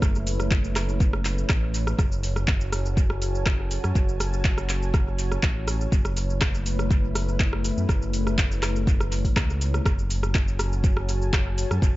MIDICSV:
0, 0, Header, 1, 4, 480
1, 0, Start_track
1, 0, Key_signature, 3, "minor"
1, 0, Tempo, 491803
1, 20, Time_signature, 4, 2, 24, 8
1, 11677, End_track
2, 0, Start_track
2, 0, Title_t, "Analog synth pad"
2, 0, Program_c, 0, 89
2, 0, Note_on_c, 0, 57, 83
2, 0, Note_on_c, 0, 64, 73
2, 0, Note_on_c, 0, 71, 71
2, 0, Note_on_c, 0, 73, 91
2, 1901, Note_off_c, 0, 71, 0
2, 1902, Note_off_c, 0, 57, 0
2, 1902, Note_off_c, 0, 64, 0
2, 1941, Note_on_c, 0, 66, 78
2, 1942, Note_on_c, 0, 81, 89
2, 1943, Note_on_c, 0, 80, 74
2, 5742, Note_off_c, 0, 66, 0
2, 5743, Note_off_c, 0, 81, 0
2, 5744, Note_off_c, 0, 80, 0
2, 5778, Note_on_c, 0, 57, 78
2, 5780, Note_on_c, 0, 64, 74
2, 5780, Note_on_c, 0, 71, 73
2, 9581, Note_off_c, 0, 57, 0
2, 9581, Note_off_c, 0, 73, 0
2, 9582, Note_off_c, 0, 64, 0
2, 9582, Note_off_c, 0, 71, 0
2, 9625, Note_on_c, 0, 81, 89
2, 9626, Note_on_c, 0, 66, 78
2, 9626, Note_on_c, 0, 73, 77
2, 9627, Note_on_c, 0, 80, 74
2, 11677, Note_off_c, 0, 66, 0
2, 11677, Note_off_c, 0, 73, 0
2, 11677, Note_off_c, 0, 80, 0
2, 11677, Note_off_c, 0, 81, 0
2, 11677, End_track
3, 0, Start_track
3, 0, Title_t, "Analog synth bass"
3, 0, Program_c, 1, 38
3, 20, Note_on_c, 1, 30, 100
3, 1408, Note_off_c, 1, 30, 0
3, 1459, Note_on_c, 1, 33, 85
3, 1888, Note_off_c, 1, 33, 0
3, 1939, Note_on_c, 1, 30, 101
3, 3688, Note_off_c, 1, 30, 0
3, 3749, Note_on_c, 1, 42, 81
3, 3829, Note_off_c, 1, 42, 0
3, 3859, Note_on_c, 1, 30, 99
3, 5248, Note_off_c, 1, 30, 0
3, 5299, Note_on_c, 1, 33, 82
3, 5728, Note_off_c, 1, 33, 0
3, 5779, Note_on_c, 1, 30, 105
3, 7528, Note_off_c, 1, 30, 0
3, 7587, Note_on_c, 1, 42, 81
3, 7668, Note_off_c, 1, 42, 0
3, 7700, Note_on_c, 1, 30, 100
3, 9026, Note_on_c, 1, 32, 85
3, 9040, Note_off_c, 1, 30, 0
3, 9108, Note_off_c, 1, 32, 0
3, 9140, Note_on_c, 1, 37, 100
3, 9568, Note_off_c, 1, 37, 0
3, 9618, Note_on_c, 1, 30, 98
3, 11368, Note_off_c, 1, 30, 0
3, 11426, Note_on_c, 1, 42, 83
3, 11508, Note_off_c, 1, 42, 0
3, 11537, Note_on_c, 1, 30, 100
3, 11677, Note_off_c, 1, 30, 0
3, 11677, End_track
4, 0, Start_track
4, 0, Title_t, "Drums"
4, 20, Note_on_c, 9, 36, 123
4, 21, Note_on_c, 9, 37, 94
4, 24, Note_on_c, 9, 82, 55
4, 118, Note_off_c, 9, 36, 0
4, 119, Note_off_c, 9, 37, 0
4, 121, Note_off_c, 9, 82, 0
4, 151, Note_on_c, 9, 82, 39
4, 248, Note_off_c, 9, 82, 0
4, 261, Note_on_c, 9, 46, 94
4, 263, Note_on_c, 9, 82, 100
4, 359, Note_off_c, 9, 46, 0
4, 361, Note_off_c, 9, 82, 0
4, 387, Note_on_c, 9, 37, 77
4, 390, Note_on_c, 9, 82, 42
4, 485, Note_off_c, 9, 37, 0
4, 487, Note_off_c, 9, 82, 0
4, 500, Note_on_c, 9, 36, 124
4, 500, Note_on_c, 9, 39, 97
4, 502, Note_on_c, 9, 82, 53
4, 597, Note_off_c, 9, 36, 0
4, 597, Note_off_c, 9, 39, 0
4, 600, Note_off_c, 9, 82, 0
4, 628, Note_on_c, 9, 82, 37
4, 726, Note_off_c, 9, 82, 0
4, 741, Note_on_c, 9, 37, 98
4, 741, Note_on_c, 9, 39, 54
4, 741, Note_on_c, 9, 46, 86
4, 743, Note_on_c, 9, 82, 100
4, 838, Note_off_c, 9, 37, 0
4, 838, Note_off_c, 9, 39, 0
4, 838, Note_off_c, 9, 46, 0
4, 841, Note_off_c, 9, 82, 0
4, 869, Note_on_c, 9, 82, 42
4, 966, Note_off_c, 9, 82, 0
4, 979, Note_on_c, 9, 36, 125
4, 982, Note_on_c, 9, 82, 56
4, 1077, Note_off_c, 9, 36, 0
4, 1079, Note_off_c, 9, 82, 0
4, 1106, Note_on_c, 9, 37, 77
4, 1204, Note_off_c, 9, 37, 0
4, 1220, Note_on_c, 9, 39, 51
4, 1220, Note_on_c, 9, 46, 89
4, 1222, Note_on_c, 9, 82, 96
4, 1318, Note_off_c, 9, 39, 0
4, 1318, Note_off_c, 9, 46, 0
4, 1320, Note_off_c, 9, 82, 0
4, 1349, Note_on_c, 9, 82, 41
4, 1446, Note_off_c, 9, 82, 0
4, 1458, Note_on_c, 9, 37, 90
4, 1458, Note_on_c, 9, 39, 101
4, 1459, Note_on_c, 9, 36, 123
4, 1460, Note_on_c, 9, 82, 53
4, 1555, Note_off_c, 9, 37, 0
4, 1555, Note_off_c, 9, 39, 0
4, 1556, Note_off_c, 9, 36, 0
4, 1558, Note_off_c, 9, 82, 0
4, 1700, Note_on_c, 9, 46, 85
4, 1703, Note_on_c, 9, 82, 98
4, 1798, Note_off_c, 9, 46, 0
4, 1800, Note_off_c, 9, 82, 0
4, 1826, Note_on_c, 9, 37, 86
4, 1829, Note_on_c, 9, 82, 44
4, 1924, Note_off_c, 9, 37, 0
4, 1926, Note_off_c, 9, 82, 0
4, 1938, Note_on_c, 9, 36, 117
4, 1941, Note_on_c, 9, 37, 91
4, 1943, Note_on_c, 9, 82, 55
4, 2036, Note_off_c, 9, 36, 0
4, 2038, Note_off_c, 9, 37, 0
4, 2041, Note_off_c, 9, 82, 0
4, 2069, Note_on_c, 9, 82, 38
4, 2167, Note_off_c, 9, 82, 0
4, 2181, Note_on_c, 9, 46, 94
4, 2183, Note_on_c, 9, 82, 100
4, 2279, Note_off_c, 9, 46, 0
4, 2281, Note_off_c, 9, 82, 0
4, 2305, Note_on_c, 9, 37, 77
4, 2307, Note_on_c, 9, 82, 40
4, 2402, Note_off_c, 9, 37, 0
4, 2405, Note_off_c, 9, 82, 0
4, 2418, Note_on_c, 9, 39, 102
4, 2419, Note_on_c, 9, 36, 119
4, 2420, Note_on_c, 9, 82, 51
4, 2515, Note_off_c, 9, 39, 0
4, 2517, Note_off_c, 9, 36, 0
4, 2518, Note_off_c, 9, 82, 0
4, 2546, Note_on_c, 9, 82, 39
4, 2644, Note_off_c, 9, 82, 0
4, 2659, Note_on_c, 9, 37, 94
4, 2659, Note_on_c, 9, 46, 90
4, 2662, Note_on_c, 9, 82, 95
4, 2757, Note_off_c, 9, 37, 0
4, 2757, Note_off_c, 9, 46, 0
4, 2759, Note_off_c, 9, 82, 0
4, 2788, Note_on_c, 9, 82, 40
4, 2885, Note_off_c, 9, 82, 0
4, 2899, Note_on_c, 9, 36, 121
4, 2903, Note_on_c, 9, 82, 54
4, 2997, Note_off_c, 9, 36, 0
4, 3001, Note_off_c, 9, 82, 0
4, 3025, Note_on_c, 9, 37, 79
4, 3123, Note_off_c, 9, 37, 0
4, 3140, Note_on_c, 9, 46, 90
4, 3142, Note_on_c, 9, 82, 94
4, 3237, Note_off_c, 9, 46, 0
4, 3240, Note_off_c, 9, 82, 0
4, 3269, Note_on_c, 9, 82, 38
4, 3367, Note_off_c, 9, 82, 0
4, 3379, Note_on_c, 9, 36, 123
4, 3379, Note_on_c, 9, 37, 93
4, 3379, Note_on_c, 9, 39, 109
4, 3382, Note_on_c, 9, 82, 54
4, 3477, Note_off_c, 9, 36, 0
4, 3477, Note_off_c, 9, 37, 0
4, 3477, Note_off_c, 9, 39, 0
4, 3479, Note_off_c, 9, 82, 0
4, 3620, Note_on_c, 9, 46, 89
4, 3622, Note_on_c, 9, 82, 93
4, 3718, Note_off_c, 9, 46, 0
4, 3720, Note_off_c, 9, 82, 0
4, 3747, Note_on_c, 9, 37, 80
4, 3749, Note_on_c, 9, 82, 41
4, 3845, Note_off_c, 9, 37, 0
4, 3847, Note_off_c, 9, 82, 0
4, 3859, Note_on_c, 9, 36, 112
4, 3863, Note_on_c, 9, 82, 52
4, 3957, Note_off_c, 9, 36, 0
4, 3961, Note_off_c, 9, 82, 0
4, 3990, Note_on_c, 9, 82, 36
4, 4088, Note_off_c, 9, 82, 0
4, 4102, Note_on_c, 9, 37, 92
4, 4102, Note_on_c, 9, 46, 95
4, 4104, Note_on_c, 9, 82, 93
4, 4200, Note_off_c, 9, 37, 0
4, 4200, Note_off_c, 9, 46, 0
4, 4202, Note_off_c, 9, 82, 0
4, 4230, Note_on_c, 9, 82, 38
4, 4328, Note_off_c, 9, 82, 0
4, 4339, Note_on_c, 9, 36, 114
4, 4340, Note_on_c, 9, 39, 104
4, 4342, Note_on_c, 9, 82, 50
4, 4437, Note_off_c, 9, 36, 0
4, 4437, Note_off_c, 9, 39, 0
4, 4440, Note_off_c, 9, 82, 0
4, 4466, Note_on_c, 9, 37, 78
4, 4469, Note_on_c, 9, 82, 37
4, 4564, Note_off_c, 9, 37, 0
4, 4566, Note_off_c, 9, 82, 0
4, 4580, Note_on_c, 9, 39, 56
4, 4580, Note_on_c, 9, 46, 88
4, 4583, Note_on_c, 9, 82, 96
4, 4678, Note_off_c, 9, 39, 0
4, 4678, Note_off_c, 9, 46, 0
4, 4680, Note_off_c, 9, 82, 0
4, 4710, Note_on_c, 9, 82, 39
4, 4808, Note_off_c, 9, 82, 0
4, 4819, Note_on_c, 9, 36, 120
4, 4821, Note_on_c, 9, 37, 86
4, 4823, Note_on_c, 9, 82, 49
4, 4917, Note_off_c, 9, 36, 0
4, 4918, Note_off_c, 9, 37, 0
4, 4921, Note_off_c, 9, 82, 0
4, 5061, Note_on_c, 9, 46, 88
4, 5064, Note_on_c, 9, 82, 91
4, 5159, Note_off_c, 9, 46, 0
4, 5161, Note_off_c, 9, 82, 0
4, 5188, Note_on_c, 9, 37, 75
4, 5190, Note_on_c, 9, 82, 38
4, 5286, Note_off_c, 9, 37, 0
4, 5288, Note_off_c, 9, 82, 0
4, 5300, Note_on_c, 9, 36, 118
4, 5300, Note_on_c, 9, 39, 108
4, 5303, Note_on_c, 9, 82, 52
4, 5397, Note_off_c, 9, 36, 0
4, 5398, Note_off_c, 9, 39, 0
4, 5400, Note_off_c, 9, 82, 0
4, 5540, Note_on_c, 9, 37, 89
4, 5540, Note_on_c, 9, 46, 85
4, 5542, Note_on_c, 9, 82, 94
4, 5637, Note_off_c, 9, 37, 0
4, 5637, Note_off_c, 9, 46, 0
4, 5640, Note_off_c, 9, 82, 0
4, 5670, Note_on_c, 9, 82, 42
4, 5768, Note_off_c, 9, 82, 0
4, 5780, Note_on_c, 9, 36, 113
4, 5782, Note_on_c, 9, 82, 52
4, 5877, Note_off_c, 9, 36, 0
4, 5880, Note_off_c, 9, 82, 0
4, 5904, Note_on_c, 9, 37, 76
4, 5906, Note_on_c, 9, 82, 37
4, 6002, Note_off_c, 9, 37, 0
4, 6004, Note_off_c, 9, 82, 0
4, 6018, Note_on_c, 9, 46, 100
4, 6021, Note_on_c, 9, 82, 91
4, 6116, Note_off_c, 9, 46, 0
4, 6118, Note_off_c, 9, 82, 0
4, 6149, Note_on_c, 9, 82, 39
4, 6246, Note_off_c, 9, 82, 0
4, 6259, Note_on_c, 9, 37, 95
4, 6259, Note_on_c, 9, 39, 111
4, 6260, Note_on_c, 9, 36, 112
4, 6262, Note_on_c, 9, 82, 53
4, 6357, Note_off_c, 9, 36, 0
4, 6357, Note_off_c, 9, 37, 0
4, 6357, Note_off_c, 9, 39, 0
4, 6359, Note_off_c, 9, 82, 0
4, 6389, Note_on_c, 9, 82, 35
4, 6486, Note_off_c, 9, 82, 0
4, 6500, Note_on_c, 9, 46, 97
4, 6503, Note_on_c, 9, 82, 96
4, 6598, Note_off_c, 9, 46, 0
4, 6600, Note_off_c, 9, 82, 0
4, 6628, Note_on_c, 9, 37, 78
4, 6631, Note_on_c, 9, 82, 39
4, 6726, Note_off_c, 9, 37, 0
4, 6728, Note_off_c, 9, 82, 0
4, 6740, Note_on_c, 9, 36, 117
4, 6744, Note_on_c, 9, 82, 50
4, 6838, Note_off_c, 9, 36, 0
4, 6842, Note_off_c, 9, 82, 0
4, 6982, Note_on_c, 9, 37, 92
4, 6982, Note_on_c, 9, 46, 99
4, 6984, Note_on_c, 9, 82, 88
4, 7080, Note_off_c, 9, 37, 0
4, 7080, Note_off_c, 9, 46, 0
4, 7082, Note_off_c, 9, 82, 0
4, 7110, Note_on_c, 9, 82, 38
4, 7208, Note_off_c, 9, 82, 0
4, 7220, Note_on_c, 9, 36, 115
4, 7222, Note_on_c, 9, 39, 108
4, 7224, Note_on_c, 9, 82, 51
4, 7317, Note_off_c, 9, 36, 0
4, 7319, Note_off_c, 9, 39, 0
4, 7322, Note_off_c, 9, 82, 0
4, 7348, Note_on_c, 9, 37, 80
4, 7446, Note_off_c, 9, 37, 0
4, 7461, Note_on_c, 9, 46, 96
4, 7464, Note_on_c, 9, 82, 92
4, 7559, Note_off_c, 9, 46, 0
4, 7561, Note_off_c, 9, 82, 0
4, 7589, Note_on_c, 9, 82, 40
4, 7687, Note_off_c, 9, 82, 0
4, 7700, Note_on_c, 9, 36, 113
4, 7702, Note_on_c, 9, 37, 92
4, 7704, Note_on_c, 9, 82, 51
4, 7798, Note_off_c, 9, 36, 0
4, 7799, Note_off_c, 9, 37, 0
4, 7801, Note_off_c, 9, 82, 0
4, 7829, Note_on_c, 9, 82, 35
4, 7926, Note_off_c, 9, 82, 0
4, 7940, Note_on_c, 9, 46, 97
4, 7942, Note_on_c, 9, 82, 93
4, 8037, Note_off_c, 9, 46, 0
4, 8040, Note_off_c, 9, 82, 0
4, 8069, Note_on_c, 9, 37, 80
4, 8071, Note_on_c, 9, 82, 39
4, 8167, Note_off_c, 9, 37, 0
4, 8169, Note_off_c, 9, 82, 0
4, 8179, Note_on_c, 9, 36, 112
4, 8183, Note_on_c, 9, 39, 110
4, 8185, Note_on_c, 9, 82, 52
4, 8277, Note_off_c, 9, 36, 0
4, 8280, Note_off_c, 9, 39, 0
4, 8283, Note_off_c, 9, 82, 0
4, 8311, Note_on_c, 9, 82, 36
4, 8408, Note_off_c, 9, 82, 0
4, 8419, Note_on_c, 9, 37, 102
4, 8419, Note_on_c, 9, 39, 58
4, 8419, Note_on_c, 9, 46, 100
4, 8422, Note_on_c, 9, 82, 98
4, 8517, Note_off_c, 9, 37, 0
4, 8517, Note_off_c, 9, 39, 0
4, 8517, Note_off_c, 9, 46, 0
4, 8519, Note_off_c, 9, 82, 0
4, 8549, Note_on_c, 9, 82, 37
4, 8647, Note_off_c, 9, 82, 0
4, 8659, Note_on_c, 9, 36, 121
4, 8664, Note_on_c, 9, 82, 48
4, 8757, Note_off_c, 9, 36, 0
4, 8761, Note_off_c, 9, 82, 0
4, 8789, Note_on_c, 9, 37, 80
4, 8791, Note_on_c, 9, 82, 35
4, 8886, Note_off_c, 9, 37, 0
4, 8889, Note_off_c, 9, 82, 0
4, 8901, Note_on_c, 9, 46, 98
4, 8903, Note_on_c, 9, 82, 92
4, 8998, Note_off_c, 9, 46, 0
4, 9001, Note_off_c, 9, 82, 0
4, 9025, Note_on_c, 9, 36, 57
4, 9028, Note_on_c, 9, 46, 53
4, 9030, Note_on_c, 9, 82, 40
4, 9123, Note_off_c, 9, 36, 0
4, 9125, Note_off_c, 9, 46, 0
4, 9127, Note_off_c, 9, 82, 0
4, 9139, Note_on_c, 9, 36, 112
4, 9142, Note_on_c, 9, 37, 98
4, 9142, Note_on_c, 9, 39, 105
4, 9144, Note_on_c, 9, 82, 53
4, 9237, Note_off_c, 9, 36, 0
4, 9240, Note_off_c, 9, 37, 0
4, 9240, Note_off_c, 9, 39, 0
4, 9242, Note_off_c, 9, 82, 0
4, 9271, Note_on_c, 9, 82, 35
4, 9369, Note_off_c, 9, 82, 0
4, 9382, Note_on_c, 9, 46, 97
4, 9384, Note_on_c, 9, 82, 92
4, 9480, Note_off_c, 9, 46, 0
4, 9482, Note_off_c, 9, 82, 0
4, 9508, Note_on_c, 9, 37, 85
4, 9510, Note_on_c, 9, 82, 39
4, 9606, Note_off_c, 9, 37, 0
4, 9608, Note_off_c, 9, 82, 0
4, 9619, Note_on_c, 9, 36, 113
4, 9622, Note_on_c, 9, 37, 103
4, 9625, Note_on_c, 9, 82, 58
4, 9716, Note_off_c, 9, 36, 0
4, 9720, Note_off_c, 9, 37, 0
4, 9722, Note_off_c, 9, 82, 0
4, 9750, Note_on_c, 9, 82, 38
4, 9847, Note_off_c, 9, 82, 0
4, 9861, Note_on_c, 9, 46, 102
4, 9864, Note_on_c, 9, 82, 99
4, 9959, Note_off_c, 9, 46, 0
4, 9961, Note_off_c, 9, 82, 0
4, 9986, Note_on_c, 9, 37, 84
4, 9988, Note_on_c, 9, 82, 40
4, 10083, Note_off_c, 9, 37, 0
4, 10086, Note_off_c, 9, 82, 0
4, 10099, Note_on_c, 9, 36, 127
4, 10099, Note_on_c, 9, 39, 104
4, 10101, Note_on_c, 9, 82, 53
4, 10196, Note_off_c, 9, 36, 0
4, 10196, Note_off_c, 9, 39, 0
4, 10199, Note_off_c, 9, 82, 0
4, 10227, Note_on_c, 9, 82, 40
4, 10325, Note_off_c, 9, 82, 0
4, 10339, Note_on_c, 9, 37, 100
4, 10339, Note_on_c, 9, 46, 97
4, 10341, Note_on_c, 9, 82, 97
4, 10436, Note_off_c, 9, 37, 0
4, 10436, Note_off_c, 9, 46, 0
4, 10439, Note_off_c, 9, 82, 0
4, 10468, Note_on_c, 9, 82, 40
4, 10565, Note_off_c, 9, 82, 0
4, 10578, Note_on_c, 9, 36, 120
4, 10579, Note_on_c, 9, 82, 52
4, 10676, Note_off_c, 9, 36, 0
4, 10676, Note_off_c, 9, 82, 0
4, 10704, Note_on_c, 9, 37, 79
4, 10801, Note_off_c, 9, 37, 0
4, 10821, Note_on_c, 9, 46, 91
4, 10823, Note_on_c, 9, 82, 97
4, 10918, Note_off_c, 9, 46, 0
4, 10921, Note_off_c, 9, 82, 0
4, 10950, Note_on_c, 9, 82, 40
4, 11048, Note_off_c, 9, 82, 0
4, 11058, Note_on_c, 9, 36, 123
4, 11063, Note_on_c, 9, 37, 97
4, 11063, Note_on_c, 9, 39, 107
4, 11065, Note_on_c, 9, 82, 54
4, 11155, Note_off_c, 9, 36, 0
4, 11160, Note_off_c, 9, 37, 0
4, 11160, Note_off_c, 9, 39, 0
4, 11163, Note_off_c, 9, 82, 0
4, 11301, Note_on_c, 9, 46, 94
4, 11304, Note_on_c, 9, 82, 95
4, 11399, Note_off_c, 9, 46, 0
4, 11401, Note_off_c, 9, 82, 0
4, 11428, Note_on_c, 9, 37, 88
4, 11431, Note_on_c, 9, 82, 42
4, 11526, Note_off_c, 9, 37, 0
4, 11528, Note_off_c, 9, 82, 0
4, 11538, Note_on_c, 9, 36, 116
4, 11546, Note_on_c, 9, 82, 56
4, 11636, Note_off_c, 9, 36, 0
4, 11643, Note_off_c, 9, 82, 0
4, 11677, End_track
0, 0, End_of_file